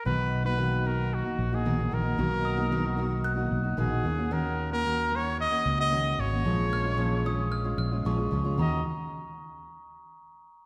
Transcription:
<<
  \new Staff \with { instrumentName = "Glockenspiel" } { \time 4/4 \key ees \minor \tempo 4 = 113 r1 | r8 dis'''4. fis'''8. r4 r16 | r1 | r8 f'''4 ees'''8 f'''8 f'''8 des'''4 |
bes''8 r2. r8 | }
  \new Staff \with { instrumentName = "Trumpet" } { \time 4/4 \key ees \minor b'8. b'8. ais'8 fis'8. aes'8. ais'8~ | ais'2~ ais'8 r8 aes'4 | bes'8. bes'8. des''8 ees''8. ees''8. des''8~ | des''2. r4 |
ees''8 r2. r8 | }
  \new Staff \with { instrumentName = "Steel-string acoustic guitar" } { \time 4/4 \key ees \minor <b, dis dis' fis'>8. <ais dis' fis'>16 <b, dis ais dis' fis'>8 <dis ais dis' fis'>8. <ais dis' fis'>8 <ais dis' fis'>16 <b, dis ais dis' fis'>16 <ais dis' fis'>16 <dis ais dis' fis'>16 <ais dis' fis'>16 | <b, dis ais dis' fis'>8. <ais dis' fis'>16 <b, dis ais dis' fis'>8 <dis ais dis' fis'>8. <ais dis' fis'>8 <ais dis' fis'>16 <b, dis ais dis' fis'>8 <ees bes des' ges'>16 <bes des' ges'>16 | <ees bes des' ges'>8. <bes des' ges'>16 <ees bes des' ges'>8 <ees bes des' ges'>8. <bes des' ges'>8 <bes des' ges'>16 <ees bes des' ges'>8 <ees bes des' ges'>16 <bes des' ges'>16 | <bes, f aes des' f'>8. <aes des' f'>16 <bes, f aes des' f'>8 <f aes des' f'>8. <aes des' f'>8 <aes des' f'>16 <bes, f aes des' f'>16 <aes des' f'>16 <f aes des' f'>16 <aes des' f'>16 |
<ees bes des' ges'>8 r2. r8 | }
  \new Staff \with { instrumentName = "Fingered electric bass" } { \clef bass \time 4/4 \key ees \minor b,,2~ b,,16 r16 ais,,4 ais,,8 | b,,2~ b,,8 b,,8 ais,,8 ees,8~ | ees,2~ ees,16 r16 des,4 aes,,8 | bes,,2~ bes,,8 bes,,8 bes,,8 des,8 |
ees,8 r2. r8 | }
>>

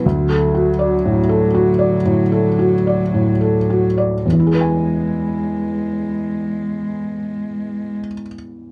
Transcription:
<<
  \new Staff \with { instrumentName = "Felt piano" } { \time 4/4 \key d \mixolydian \tempo 4 = 54 d,16 a'16 fis'16 d''16 a,16 a'16 fis'16 d''16 a,16 a'16 fis'16 d''16 a,16 a'16 fis'16 d''16 | <e, e e' gis' b' gis''>1 | }
  \new Staff \with { instrumentName = "Cello" } { \clef bass \time 4/4 \key d \mixolydian fis1 | gis1 | }
>>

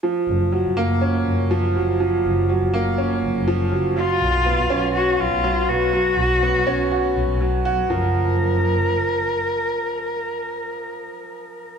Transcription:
<<
  \new Staff \with { instrumentName = "Cello" } { \time 4/4 \key fis \major \tempo 4 = 122 r1 | r1 | eis'2 fis'8 eis'4 fis'8~ | fis'2. r4 |
ais'1~ | ais'1 | }
  \new Staff \with { instrumentName = "Upright piano" } { \clef bass \time 4/4 \key fis \major eis8 r8 fis8 ais8 cis'8 r8 eis8 fis8 | eis8 r8 fis8 ais8 cis'8 r8 eis8 fis8 | fis8 r8 b8 cis'8 fis'8 r8 fis8 b8 | fis8 r8 b8 cis'8 fis'8 r8 fis8 fis'8 |
eis8 r2. r8 | r1 | }
  \new Staff \with { instrumentName = "Double bass section" } { \clef bass \time 4/4 \key fis \major r8 fis,,8 r16 fis,,16 fis,,8 r8 fis,,16 fis,,8 r16 fis,,8 | r8 fis,,8 r16 fis,,16 fis,,8 r8 fis,,16 fis,,8 r16 fis,,8 | r8 b,,8 r16 b,,16 b,,8 r8 b,,16 b,,8 r16 b,,8 | r8 b,,8 r16 b,,16 b,,8 r8 b,,16 b,,8 r16 b,,8 |
fis,,2. r4 | r1 | }
>>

